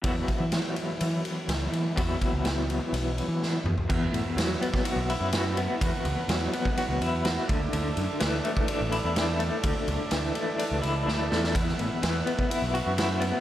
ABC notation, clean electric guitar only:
X:1
M:4/4
L:1/8
Q:1/4=126
K:D
V:1 name="Clean electric guitar"
[E,,E,F,B,EF]8 | [E,,E,F,B,EF]6- [E,,E,F,B,EF] z | E,,2 F, B, F E F B, | E,,2 F, B, F E F D, |
D,2 E, A, D E D A, | D,2 E, A, D E D A, | E,,2 E, B, E F E B, |]